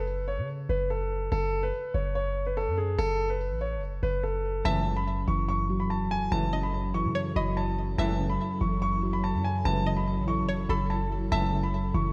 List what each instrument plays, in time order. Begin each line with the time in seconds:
Already playing: 808-style bass F#1, grand piano B4
0.28 grand piano C#5
0.38 808-style bass C#3
0.69 808-style bass F#1, grand piano B4
0.90 grand piano A4
1.32 808-style bass F#1, grand piano A4
1.63 grand piano B4
1.94 808-style bass F#1, grand piano C#5
2.15 grand piano C#5
2.47 grand piano B4
2.57 grand piano A4
2.67 808-style bass F#2
2.78 grand piano G#4
2.98 808-style bass F#1, grand piano A4
3.30 grand piano B4
3.51 808-style bass A1
3.61 grand piano C#5
3.77 808-style bass F#1
4.03 808-style bass F#1, grand piano B4
4.23 grand piano A4
4.65 808-style bass F#1, brass ensemble C#2 A2 E3, synth keys F#2, ambient pad F#3 E4 A4, synth pluck E5, grand piano A5
4.86 synth keys C#3
4.96 grand piano B5
5.07 synth keys F#2
5.28 808-style bass F#1, synth keys E3, grand piano C#6
5.48 synth keys F#2, grand piano C#6
5.70 synth keys F#3
5.80 808-style bass E1, grand piano B5
5.90 synth keys F#2, grand piano A5
6.11 grand piano G#5
6.32 808-style bass F#1, brass ensemble C#2 A2 E3, synth keys F#2, grand piano A5
6.53 synth keys C#3, synth pluck D#5
6.63 grand piano B5
6.74 synth keys F#2
6.94 synth keys E3, grand piano C#6
7.05 808-style bass C#3
7.15 synth keys F#2, synth pluck C#5
7.36 808-style bass F#1, synth keys F#3, synth pluck D#5, grand piano B5
7.57 synth keys F#2, grand piano A5
7.98 808-style bass F#1, brass ensemble C#2 A2 E3, synth keys F#2, synth pluck E5, grand piano A5
8.19 synth keys C#3
8.30 grand piano B5
8.40 synth keys F#2
8.61 808-style bass F#1, synth keys E3, grand piano C#6
8.81 synth keys F#2, grand piano C#6
9.03 synth keys F#3
9.13 grand piano B5
9.24 synth keys F#2, grand piano A5
9.34 808-style bass F#2
9.44 grand piano G#5
9.65 808-style bass F#1, brass ensemble C#2 A2 E3, synth keys F#2, grand piano A5
9.86 synth keys C#3, synth pluck D#5
9.97 grand piano B5
10.07 synth keys F#2
10.17 808-style bass A1
10.27 synth keys E3, grand piano C#6
10.43 808-style bass F#1
10.48 synth keys F#2, synth pluck C#5
10.69 808-style bass F#1, synth keys F#3, synth pluck A4, grand piano B5
10.90 synth keys F#2, grand piano A5
11.31 808-style bass F#1, brass ensemble C#2 A2 E3, synth keys F#2, synth pluck E5, grand piano A5
11.53 synth keys C#3
11.63 grand piano B5
11.74 synth keys F#2
11.94 808-style bass F#1, synth keys E3, grand piano C#6